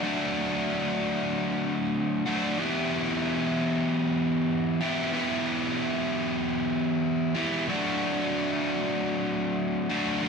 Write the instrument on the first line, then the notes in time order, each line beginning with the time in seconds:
overdriven electric guitar
0.03 D3 F#3 A3 D4 F#4
2.26 D3 F#3 A3 D4 F#4
2.58 E3 B3 E4 G4
4.81 E3 B3 E4 G4
5.13 E3 B3 E4 G4
7.35 E3 B3 E4 G4
7.68 D3 F#3 A3 D4 F#4
9.90 D3 F#3 A3 D4 F#4
10.22 D3 F#3 A3 D4 F#4